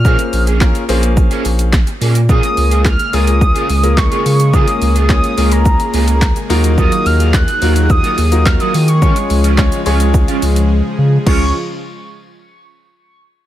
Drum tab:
CC |----------------|----------------|----------------|----------------|
HH |-xox-xox-xox-xox|-xox-xox-xox-xox|-xox-xox-xox-xox|-xox-xox-xox-xox|
SH |xxxxxxxxxxxxxxxx|xxxxxxxxxxxxxxxx|xxxxxxxxxxxxxxxx|xxxxxxxxxxxxxxxx|
CP |----x-------x---|----x-------x---|----x-------x---|----x-------x---|
SD |----o-------o---|----o-------o---|----o-------o---|----o-------o---|
BD |o---o---o---o---|o---o---o---o---|o---o---o---o---|o---o---o---o---|

CC |----------------|x---------------|
HH |-xox-xox-xox----|----------------|
SH |xxxxxxxxxxxx----|----------------|
CP |----x-----------|----------------|
SD |----o-----------|----------------|
BD |o---o---o-------|o---------------|